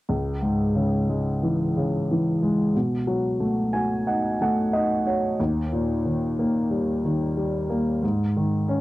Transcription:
0.09 C#2
0.42 G#2
0.75 C#3
1.09 G#3
1.43 E3
1.77 C#3
2.11 E3
2.43 G#3
2.76 B2
3.07 F#3
3.40 A3
3.73 F#4 G#5
4.07 D#4 F#5
4.41 A3 F#5
4.73 D#4 D#5
5.06 F#4 C#5
5.40 D#2
5.72 A#2
6.05 D#3
6.39 A#3
6.71 G3
7.05 D#3
7.37 G3
7.70 A#3
8.03 G#2
8.36 D#3
8.68 C#4

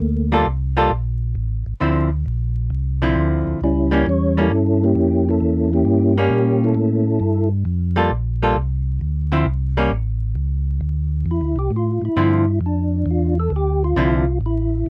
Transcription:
Already playing: A3 A#3
0.00 D2
0.32 G3 A#3 F4 A4
0.46 C2
0.77 G3 A#3 F4 A4
0.90 A#1
1.35 A1
1.66 A1
1.80 D2 D3 F3 C4 E4
2.26 A#1
2.70 C2
3.02 D3 F3 C4 E4
3.16 D2
3.47 D2
3.61 C#2 G3 C#4 E4
3.91 G3 A#3 C#4 E4
4.07 E2 C#5
4.37 G3 A#3 C#4 E4
4.41 A4
4.51 G2
4.83 A#3 C#4 G4
4.95 F2
5.29 C#4 E4 A4
5.40 E2
5.73 A#3 C#4 G4
5.85 G2
6.18 G3 A#3 C#4 G4
6.30 A#2
6.64 C#4 E4 A4
6.75 A2
7.20 G2
7.65 F2
7.96 G3 A#3 F4 A4
8.10 A#1
8.43 G3 A#3 F4 A4
8.55 C2
9.01 D2
9.32 D3 F3 C4 E4
9.45 C2
9.77 G3 A#3 C#4
9.91 A1
10.35 C#2
10.80 D2
11.26 E2
11.31 E4
11.41 D2
11.56 C2 G4
11.71 A2
11.76 F4
12.01 A2 E4
12.16 G2 D3 F3 C4 E4
12.60 F2
12.66 D4
13.06 E2
13.11 F4
13.40 A4
13.50 D2
13.56 G4
13.84 F4
13.96 C2 D3 F3 C4 E4
14.41 A1
14.46 E4

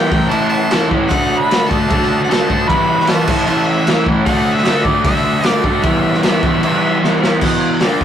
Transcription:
Already playing: E3 G3 B3 E4 G5
0.10 A2 E3 A3 C#4 E4, kick
0.29 A2 E3 A3 C#4 E4 A5, crash
0.49 A5
0.70 A2 E3 A3 C#4 E4, snare, crash
0.89 A2 E3 A3 C#4 E4, kick
1.08 D3 A3 D4 F#5, kick, crash
1.13 F#4
1.39 B5
1.50 D3 A3 D4 F#4, snare, crash
1.68 D3 A3 D4 F#4 A5, kick
1.89 D3 A3 D4 F#4, kick, crash
2.03 snare
2.24 D3 F#5
2.29 A3 D4 F#4 A5, snare, crash
2.47 D3 A3 D4 F#4, kick
2.67 E3 G3 B3 E4 B5, kick, crash
3.00 snare
3.06 E3 G3 B3 E4 A5, snare, crash
3.27 A2 E3 A3 C#4, kick, crash
3.31 E4
3.46 A2 E3 A3 C#4 E4 A5, crash
3.66 E5
3.87 A2 E3 A3 C#4 E4, snare, crash
4.06 A2 E3 A3 C#4 E4, kick
4.25 D3 A3 D4 F#4 F#5, kick, crash
4.53 E5
4.58 snare
4.65 D3 A3 D4 F#4, snare, crash
4.85 D3 A3 D4 F#4 D5, kick
5.04 D3 A3 D4 E5, kick, crash
5.08 F#4
5.16 snare
5.43 D3 A3 D5, snare, crash
5.48 D4 F#4
5.64 D3 A3 D4 F#4 D5, kick
5.83 E3 G3 B3 E4 E5, kick, crash
6.14 snare
6.23 E3 G3 B3 E4 E5, snare, crash
6.43 E3 G3 B3 E4, kick
6.62 E3 G3 B3 E4 E5, crash
7.02 E3 G3 B3 E4, snare
7.21 E3 G3 B3 E4, snare
7.41 E2 B2 E3, kick, crash
7.80 D3 A3 D4, snare, open hi-hat
8.01 E2 B2, kick

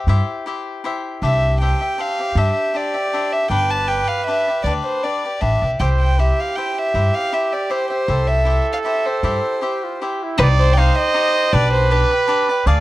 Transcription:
0.07 G2 E4 G4 C5 E5
0.46 E4 G4 C5 E5
0.84 E4 G4 C5 E5
1.22 C2 D4 G4 C5 E5
1.61 D4 G4 C5 E5 G5
1.81 G4 C5 E5
1.98 D4 G4 C5 E5 F5
2.19 G4 C5 E5
2.35 G2 D4 G4 C5 E5
2.74 D4 G4 C5 D5 E5
2.94 G4 C5 E5
3.13 D4 G4 C5 E5
3.33 E5
3.50 G1 D4 G4 B4 D5 G5
3.70 A5
3.87 D4 G4 B4 D5 G5
4.07 G4 B4 D5 F5
4.27 D4 G4 B4 D5 E5
4.48 G4 B4 D5
4.63 D2 D4 G4 B4 D5
4.84 C5
5.03 D4 G4 B4 D5
5.24 G4 B4 D5
5.41 A1 D4 G4 B4 D5 E5
5.62 B1 G4 B4 D5
5.80 C2 E4 G4 C5 E5 G5
6.00 G5
6.19 E4 G4 C5 E5
6.40 F5
6.56 E4 G4 C5 E5 G5
6.78 E5
6.94 G2 E4 G4 C5 E5
7.15 F5
7.32 E4 G4 C5 E5
7.52 G4 C5 D5 E5
7.70 E4 G4 C5 E5
7.90 G4 C5 E5
8.08 C2 E4 G4 A4 C5 E5
8.28 E5
8.45 E4 G4 C5 E5
8.73 F5
8.85 E4 G4 C5 E5
9.06 G4 C5 E5
9.23 G2 E4 G4 C5 E5
9.61 E4 G4 C5 E5
9.84 F4
10.01 E4 G4 C5 E5
10.24 E4
10.38 C2 D#4 G4 B4 C5
10.42 D5
10.59 C5
10.73 D#4 G5
10.77 G4 C5 D#5 F5
10.99 D#5
11.14 D#4 G4 C5 D#5
11.53 B1 D4 G4 B4 D5
11.74 C5
11.91 D4 G4 B4 D5
12.11 G4 B4 D5
12.27 D4 G4 B4 D5
12.49 G4 B4 D5
12.66 D2 D4 G#4 D5 F5

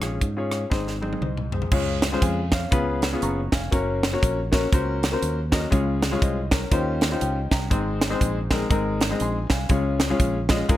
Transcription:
Already playing: G#2
0.01 A#1 C#4 F4 G#4 C#5, cross-stick, closed hi-hat
0.21 G#2, kick, closed hi-hat
0.37 C#4 F4 G#4 C#5
0.52 cross-stick, closed hi-hat
0.70 G#1 G#2 C4 D#4 G#4 C5, kick, snare
0.87 snare
1.01 C4 D#4 G#4 C5, high tom
1.13 high tom
1.21 C2 C5 D#5, mid tom
1.37 mid tom
1.52 G#4 C5, floor tom
1.62 floor tom
1.71 C#2 C#3 G#3 C#4 F4 G#4 C#5, kick, crash
2.02 snare, closed hi-hat
2.12 G#3 C#4 F4 G#4 C5
2.22 F2 F5 G#5, kick, closed hi-hat
2.52 C#5 F5, kick, snare, closed hi-hat
2.71 C#2 C#3 B3 C#4 F4 G#4 B4, kick, closed hi-hat
3.02 snare, closed hi-hat
3.13 B3 C#4 F4 G#4 C#5
3.22 F#1 A#5 C#6, closed hi-hat
3.52 F1 F5 G#5, kick, snare, closed hi-hat
3.71 F#1 A#3 C#4 F#4 A#4 C#5, kick, closed hi-hat
4.03 snare, closed hi-hat
4.13 A#3 C#4 F#4 A#4 C#5
4.23 A#1, kick, closed hi-hat
4.51 A#3 C#4 F#4 A#4 C#5, kick, snare, closed hi-hat
4.72 C#2 A#3 C#4 F#4 A#4 C5, kick, closed hi-hat
5.03 snare, closed hi-hat
5.12 A#3 C#4 F#4 A#4 C5
5.22 D#2, closed hi-hat
5.52 A#3 C#4 F#4 A#4 D#5, kick, snare, closed hi-hat
5.71 C#2 C#3 G#3 C#4 F4 G#4 C#5, kick, closed hi-hat
6.03 snare, closed hi-hat
6.11 G#3 C#4 F4 G#4 C#5
6.22 C2 C5 D#5, kick, closed hi-hat
6.51 A#4 C#5, kick, snare, closed hi-hat
6.71 D#2 D#3 C#4 D#4 F4 G4 C5, kick, closed hi-hat
7.01 snare, closed hi-hat
7.11 C#4 D#4 F4 G4 C5
7.21 C#2 D#5 G5, closed hi-hat
7.51 C2 G5 A#5, kick, snare, closed hi-hat
7.70 G#1 G#2 G#3 C4 D#4 G#4 C5, kick, closed hi-hat
8.01 snare, closed hi-hat
8.10 G#3 C4 D#4 G#4 C5
8.21 A#1, kick, closed hi-hat
8.51 G#3 C4 D#4 G#4 A#4, kick, snare, closed hi-hat
8.70 G#1 G#3 C4 D#4 G#4 A#4, kick, closed hi-hat
9.01 snare, closed hi-hat
9.10 G#3 C4 D#4 G#4 D#5
9.20 A#1 G#5 C6, closed hi-hat
9.50 C2 F5 G#5, kick, snare, closed hi-hat
9.69 C#2 C#3 G#3 C#4 F4 G#4 C#5, kick, closed hi-hat
10.00 snare, closed hi-hat
10.10 G#3 C#4 F4 G#4 C#5
10.20 A#1, kick, closed hi-hat
10.49 G#3 C#4 F4 G#4 D#5, kick, snare, closed hi-hat
10.69 G#1 G#3 C#4 F4 G#4 A#4, kick, closed hi-hat

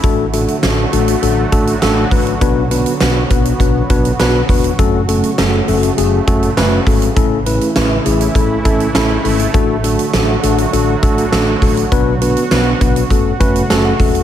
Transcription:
0.03 A1 D3 F#3 A3 D4 F#4 A4, kick, closed hi-hat
0.33 A3 D4 F#4 A4, closed hi-hat
0.48 closed hi-hat
0.63 A1 A3 D4 F#4 A4, snare, closed hi-hat
0.93 A1 A3 D4 F#4 A4, closed hi-hat
1.08 closed hi-hat
1.22 A1 A3 D4 F#4 A4, closed hi-hat
1.52 A1 A3 D4 F#4 A4, kick, closed hi-hat
1.67 closed hi-hat
1.82 A1 A3 D4 F#4 A4, snare, closed hi-hat
2.11 A1 A3 D4 F#4 B4, kick, open hi-hat
2.27 closed hi-hat
2.41 B1 B3 D4 F#4 B4, kick, closed hi-hat
2.71 B3 D4 F#4 B4, closed hi-hat
2.86 closed hi-hat
3.00 B1 B3 D4 F#4 B4, snare, closed hi-hat
3.30 B1 B3 D4 F#4 B4, kick, closed hi-hat
3.45 closed hi-hat
3.60 B1 B3 D4 F#4 B4, kick, closed hi-hat
3.90 B1 B3 D4 F#4 B4, kick, closed hi-hat
4.05 closed hi-hat
4.20 B1 B3 D4 F#4 B4, snare, closed hi-hat
4.49 E1 B3 D4 F#4 B4, kick, open hi-hat
4.64 closed hi-hat
4.79 F#1 C#3 A3 C#4 F#4 A4, kick, closed hi-hat
5.08 A3 C#4 F#4 A4, closed hi-hat
5.23 closed hi-hat
5.38 F#1 A3 C#4 F#4 A4, snare, closed hi-hat
5.68 F#1 A3 C#4 F#4 A4, open hi-hat
5.83 closed hi-hat
5.98 F#1 A3 C#4 F#4 G#4, closed hi-hat
6.27 F#1 A3 C#4 F#4 A4, kick, closed hi-hat
6.43 closed hi-hat
6.57 F#1 A3 C#4 F#4 B4, snare, closed hi-hat
6.87 G#1 A3 C#4 F#4 A4, kick, open hi-hat
7.02 closed hi-hat
7.16 A1 E3 A3 C#4 E4 A4, kick, closed hi-hat
7.46 A3 C#4 E4 B4, closed hi-hat
7.61 closed hi-hat
7.76 A1 A3 C#4 E4 B4, snare, closed hi-hat
8.06 A1 A3 C#4 E4 G#4, closed hi-hat
8.21 closed hi-hat
8.35 A1 A3 C#4 E4 A4, kick, closed hi-hat
8.65 A1 A3 C#4 E4 A4, kick, closed hi-hat
8.80 closed hi-hat
8.95 A1 A3 C#4 E4 A4, snare, closed hi-hat
9.24 G#1 A3 C#4 E4 A4, open hi-hat
9.39 closed hi-hat
9.54 A1 D3 F#3 A3 D4 F#4 A4, kick, closed hi-hat
9.84 A3 D4 F#4 A4, closed hi-hat
9.99 closed hi-hat
10.14 A1 A3 D4 F#4 A4, snare, closed hi-hat
10.43 A1 A3 D4 F#4 A4, closed hi-hat
10.58 closed hi-hat
10.73 A1 A3 D4 F#4 A4, closed hi-hat
11.03 A1 A3 D4 F#4 A4, kick, closed hi-hat
11.18 closed hi-hat
11.32 A1 A3 D4 F#4 A4, snare, closed hi-hat
11.62 A1 A3 D4 F#4 A4, kick, open hi-hat
11.77 closed hi-hat
11.92 B1 B3 D4 F#4 B4, kick, closed hi-hat
12.21 B3 D4 F#4 B4, closed hi-hat
12.37 closed hi-hat
12.51 B1 B3 D4 F#4 B4, snare, closed hi-hat
12.81 B1 B3 D4 F#4 B4, kick, closed hi-hat
12.96 closed hi-hat
13.10 F#1 C#3 A3 C#4 F#4 A4, kick, closed hi-hat
13.40 F#1 A3 C#4 F#4 B4, kick, closed hi-hat
13.55 closed hi-hat
13.70 F#1 A3 C#4 F#4 A4 A5, snare, closed hi-hat
13.85 F#5
14.00 E1 A3 C#4 F#4 A4, kick, open hi-hat
14.15 closed hi-hat

